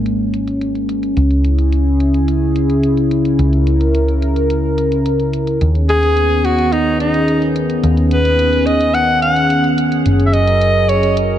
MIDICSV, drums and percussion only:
0, 0, Header, 1, 2, 480
1, 0, Start_track
1, 0, Tempo, 555556
1, 1010, Time_signature, 4, 2, 24, 8
1, 9837, End_track
2, 0, Start_track
2, 0, Title_t, "Drums"
2, 51, Note_on_c, 9, 42, 77
2, 138, Note_off_c, 9, 42, 0
2, 291, Note_on_c, 9, 42, 79
2, 377, Note_off_c, 9, 42, 0
2, 411, Note_on_c, 9, 42, 53
2, 497, Note_off_c, 9, 42, 0
2, 530, Note_on_c, 9, 42, 77
2, 617, Note_off_c, 9, 42, 0
2, 650, Note_on_c, 9, 42, 37
2, 737, Note_off_c, 9, 42, 0
2, 769, Note_on_c, 9, 42, 78
2, 856, Note_off_c, 9, 42, 0
2, 890, Note_on_c, 9, 42, 51
2, 976, Note_off_c, 9, 42, 0
2, 1009, Note_on_c, 9, 42, 76
2, 1095, Note_off_c, 9, 42, 0
2, 1129, Note_on_c, 9, 42, 35
2, 1215, Note_off_c, 9, 42, 0
2, 1249, Note_on_c, 9, 42, 72
2, 1335, Note_off_c, 9, 42, 0
2, 1370, Note_on_c, 9, 42, 51
2, 1456, Note_off_c, 9, 42, 0
2, 1490, Note_on_c, 9, 42, 74
2, 1577, Note_off_c, 9, 42, 0
2, 1730, Note_on_c, 9, 42, 74
2, 1816, Note_off_c, 9, 42, 0
2, 1852, Note_on_c, 9, 42, 52
2, 1938, Note_off_c, 9, 42, 0
2, 1971, Note_on_c, 9, 42, 77
2, 2057, Note_off_c, 9, 42, 0
2, 2210, Note_on_c, 9, 42, 77
2, 2296, Note_off_c, 9, 42, 0
2, 2330, Note_on_c, 9, 42, 51
2, 2416, Note_off_c, 9, 42, 0
2, 2449, Note_on_c, 9, 42, 76
2, 2535, Note_off_c, 9, 42, 0
2, 2570, Note_on_c, 9, 42, 35
2, 2656, Note_off_c, 9, 42, 0
2, 2689, Note_on_c, 9, 42, 77
2, 2775, Note_off_c, 9, 42, 0
2, 2810, Note_on_c, 9, 42, 48
2, 2896, Note_off_c, 9, 42, 0
2, 2930, Note_on_c, 9, 42, 75
2, 3016, Note_off_c, 9, 42, 0
2, 3049, Note_on_c, 9, 42, 34
2, 3135, Note_off_c, 9, 42, 0
2, 3170, Note_on_c, 9, 42, 70
2, 3257, Note_off_c, 9, 42, 0
2, 3290, Note_on_c, 9, 42, 49
2, 3376, Note_off_c, 9, 42, 0
2, 3410, Note_on_c, 9, 42, 73
2, 3496, Note_off_c, 9, 42, 0
2, 3529, Note_on_c, 9, 42, 35
2, 3616, Note_off_c, 9, 42, 0
2, 3649, Note_on_c, 9, 42, 73
2, 3735, Note_off_c, 9, 42, 0
2, 3769, Note_on_c, 9, 42, 50
2, 3855, Note_off_c, 9, 42, 0
2, 3889, Note_on_c, 9, 42, 76
2, 3975, Note_off_c, 9, 42, 0
2, 4129, Note_on_c, 9, 42, 74
2, 4216, Note_off_c, 9, 42, 0
2, 4250, Note_on_c, 9, 42, 50
2, 4336, Note_off_c, 9, 42, 0
2, 4369, Note_on_c, 9, 42, 74
2, 4456, Note_off_c, 9, 42, 0
2, 4490, Note_on_c, 9, 42, 34
2, 4576, Note_off_c, 9, 42, 0
2, 4609, Note_on_c, 9, 42, 71
2, 4695, Note_off_c, 9, 42, 0
2, 4728, Note_on_c, 9, 42, 47
2, 4815, Note_off_c, 9, 42, 0
2, 4848, Note_on_c, 9, 42, 73
2, 4935, Note_off_c, 9, 42, 0
2, 4969, Note_on_c, 9, 42, 32
2, 5056, Note_off_c, 9, 42, 0
2, 5089, Note_on_c, 9, 42, 71
2, 5176, Note_off_c, 9, 42, 0
2, 5209, Note_on_c, 9, 42, 47
2, 5295, Note_off_c, 9, 42, 0
2, 5329, Note_on_c, 9, 42, 70
2, 5415, Note_off_c, 9, 42, 0
2, 5570, Note_on_c, 9, 42, 70
2, 5656, Note_off_c, 9, 42, 0
2, 5689, Note_on_c, 9, 42, 50
2, 5775, Note_off_c, 9, 42, 0
2, 5810, Note_on_c, 9, 42, 72
2, 5896, Note_off_c, 9, 42, 0
2, 6051, Note_on_c, 9, 42, 70
2, 6137, Note_off_c, 9, 42, 0
2, 6170, Note_on_c, 9, 42, 48
2, 6257, Note_off_c, 9, 42, 0
2, 6291, Note_on_c, 9, 42, 70
2, 6377, Note_off_c, 9, 42, 0
2, 6410, Note_on_c, 9, 42, 32
2, 6496, Note_off_c, 9, 42, 0
2, 6530, Note_on_c, 9, 42, 73
2, 6616, Note_off_c, 9, 42, 0
2, 6650, Note_on_c, 9, 42, 46
2, 6737, Note_off_c, 9, 42, 0
2, 6770, Note_on_c, 9, 42, 70
2, 6856, Note_off_c, 9, 42, 0
2, 6889, Note_on_c, 9, 42, 33
2, 6975, Note_off_c, 9, 42, 0
2, 7009, Note_on_c, 9, 42, 70
2, 7095, Note_off_c, 9, 42, 0
2, 7129, Note_on_c, 9, 42, 47
2, 7215, Note_off_c, 9, 42, 0
2, 7249, Note_on_c, 9, 42, 71
2, 7336, Note_off_c, 9, 42, 0
2, 7369, Note_on_c, 9, 42, 32
2, 7455, Note_off_c, 9, 42, 0
2, 7488, Note_on_c, 9, 42, 71
2, 7575, Note_off_c, 9, 42, 0
2, 7608, Note_on_c, 9, 42, 47
2, 7695, Note_off_c, 9, 42, 0
2, 7728, Note_on_c, 9, 42, 72
2, 7815, Note_off_c, 9, 42, 0
2, 7969, Note_on_c, 9, 42, 71
2, 8055, Note_off_c, 9, 42, 0
2, 8090, Note_on_c, 9, 42, 48
2, 8177, Note_off_c, 9, 42, 0
2, 8209, Note_on_c, 9, 42, 73
2, 8296, Note_off_c, 9, 42, 0
2, 8330, Note_on_c, 9, 42, 32
2, 8416, Note_off_c, 9, 42, 0
2, 8449, Note_on_c, 9, 42, 74
2, 8536, Note_off_c, 9, 42, 0
2, 8570, Note_on_c, 9, 42, 47
2, 8657, Note_off_c, 9, 42, 0
2, 8689, Note_on_c, 9, 42, 75
2, 8775, Note_off_c, 9, 42, 0
2, 8810, Note_on_c, 9, 42, 34
2, 8896, Note_off_c, 9, 42, 0
2, 8930, Note_on_c, 9, 42, 71
2, 9016, Note_off_c, 9, 42, 0
2, 9050, Note_on_c, 9, 42, 47
2, 9136, Note_off_c, 9, 42, 0
2, 9170, Note_on_c, 9, 42, 73
2, 9257, Note_off_c, 9, 42, 0
2, 9411, Note_on_c, 9, 42, 74
2, 9497, Note_off_c, 9, 42, 0
2, 9531, Note_on_c, 9, 42, 50
2, 9617, Note_off_c, 9, 42, 0
2, 9651, Note_on_c, 9, 42, 72
2, 9737, Note_off_c, 9, 42, 0
2, 9837, End_track
0, 0, End_of_file